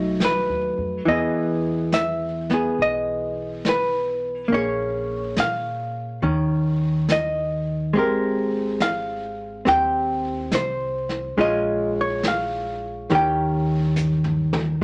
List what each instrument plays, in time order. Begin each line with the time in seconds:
Already playing: upright bass B1, hollow-body jazz guitar F#3 A3 D#4 D#5
0.20 snare, hi-hat pedal
0.25 hollow-body jazz guitar B4
0.49 upright bass D#2
0.77 upright bass F2
1.05 upright bass E2, hollow-body jazz guitar E3 B3 D#5, brush sweep
1.10 hollow-body jazz guitar G#4
1.92 hollow-body jazz guitar E5, snare, hi-hat pedal
2.50 hollow-body jazz guitar B3, snare
2.54 hollow-body jazz guitar G#4
2.78 upright bass B1, hollow-body jazz guitar D#5, brush sweep
3.65 snare, hi-hat pedal
3.69 hollow-body jazz guitar B4
4.48 upright bass A#1, hollow-body jazz guitar A#3, brush sweep
4.52 hollow-body jazz guitar C#4 G#4 C#5
5.37 upright bass A#2, hollow-body jazz guitar F5, snare, hi-hat pedal
6.22 upright bass D#2, hollow-body jazz guitar D#3 C#4, brush sweep
7.09 hollow-body jazz guitar D#5, snare, hi-hat pedal
7.93 upright bass G#1, hollow-body jazz guitar G#3 C4 G4, brush sweep
7.99 hollow-body jazz guitar A#4
8.80 hollow-body jazz guitar F5, snare, hi-hat pedal
9.65 upright bass D#2, hollow-body jazz guitar C4 G4 G5, brush sweep, snare
10.52 upright bass C2, hollow-body jazz guitar C5, snare, hi-hat pedal
11.09 snare
11.37 upright bass A#1, hollow-body jazz guitar G#3 C#4 F4 D#5, brush sweep
12.01 hollow-body jazz guitar C#5
12.23 snare, hi-hat pedal
12.28 hollow-body jazz guitar F5
13.10 upright bass D#2, hollow-body jazz guitar D#3 C#4 G4 A#4, brush sweep, snare
13.15 hollow-body jazz guitar G5
13.96 floor tom, hi-hat pedal
14.24 floor tom
14.53 mid tom